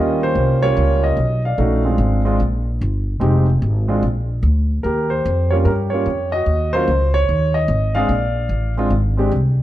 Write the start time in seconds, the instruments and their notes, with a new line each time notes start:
Already playing: upright bass D#2, grand piano G3 A#3 C#4 F4 G4 D#5
0.23 grand piano C5
0.35 upright bass C2
0.62 grand piano G3 A#3 C#4 F4 C#5
0.77 upright bass C#2
1.04 grand piano D#5
1.17 upright bass B1
1.45 grand piano D5 F5
1.58 upright bass A#1, grand piano A3 C#4 D#4 F#4
1.85 grand piano G#3 C4 D4 F4
1.98 upright bass G#1
2.25 grand piano G#3 C4 D4 F4
2.40 upright bass A#1
2.81 upright bass G1
3.20 upright bass F1, grand piano G#3 C4 D#4 G4
3.62 upright bass G#1
3.88 grand piano G#3 C4 D4 F4
4.03 upright bass A#1
4.43 upright bass D2
4.83 upright bass D#2, grand piano G4 A#4
5.10 grand piano C5
5.25 upright bass F2
5.50 grand piano G3 A#3 C#4 F4 C#5
5.65 upright bass G2, grand piano G4 A#4
5.90 grand piano G3 A#3 C#4 C#5
5.94 grand piano F4
6.06 upright bass F2
6.32 grand piano F#4 D#5
6.46 upright bass D#2
6.73 grand piano F#3 A#3 C#4 F4 C5
6.88 upright bass C#2
7.14 grand piano C#5
7.29 upright bass D#2
7.54 grand piano D#5
7.68 upright bass G#1
7.95 grand piano G#3 C4 D4 G#4 D5 F5
8.09 upright bass A#1
8.49 upright bass A1
8.77 grand piano G#3 C4 D4 F4
8.90 upright bass G#1
9.17 grand piano G#3 C4 D4 G4
9.32 upright bass C2